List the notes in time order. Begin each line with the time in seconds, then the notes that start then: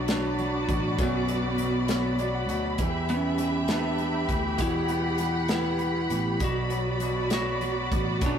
Already playing: B1 B2 F#3 D4 F#4 D5 B5
0.08 F#3 B3 D4, snare, closed hi-hat
0.39 F#3, closed hi-hat
0.68 A1 B2 B3, kick, closed hi-hat
0.98 B1 F#2 F#3 D4, kick, closed hi-hat
1.03 B3
1.28 F#3 B3, closed hi-hat
1.58 B2 F#3, closed hi-hat
1.88 F#3 B3, snare, closed hi-hat
2.19 F#3 D5, closed hi-hat
2.34 F#5
2.49 D2 B2 B3 F#5, closed hi-hat
2.78 E2 E3 G3 E4 G4 E5, kick, closed hi-hat
3.09 B3 C#4, closed hi-hat
3.38 E3 G3, closed hi-hat
3.68 B3 D4, snare, closed hi-hat
3.98 G3, closed hi-hat
4.29 D2 E3 B3, kick, closed hi-hat
4.58 E2 B2 G3 E4 F#5, kick, closed hi-hat
4.88 B3, closed hi-hat
5.18 E3 G3, closed hi-hat
5.48 B3, snare, closed hi-hat
5.53 E4
5.79 G3, closed hi-hat
6.10 A1 E3 B3, closed hi-hat
6.39 B1 B2 F#3 D4 F#4 D5, kick, closed hi-hat
6.44 F#4
6.70 F#3 B3, closed hi-hat
7.00 B2 F#3, closed hi-hat
7.30 F#3 B3 F#4, snare, closed hi-hat
7.61 F#3, closed hi-hat
7.92 A1 B2 B3, kick, closed hi-hat
8.21 B1 F#2 F#3 D4, kick, closed hi-hat
8.26 D4